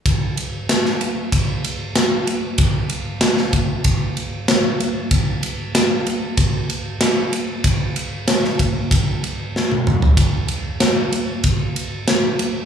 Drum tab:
RD |x-x-x-x-x-x-x-x-|x-x-x-x-x-x-x-x-|x-x-x-x-x-x-x-x-|x-x-x-x-x-x-----|
SD |----oo------o---|----oo------o---|----o-------o---|----oo------o---|
T1 |----------------|----------------|----------------|-------------o--|
T2 |----------------|----------------|----------------|--------------o-|
FT |----------------|----------------|----------------|---------------o|
BD |o-------o-------|o-----o-o-------|o-------o-------|o-----o-o-------|

RD |x-x-x-x-x-x-x-x-|
SD |----o-------o---|
T1 |----------------|
T2 |----------------|
FT |----------------|
BD |o-------o-------|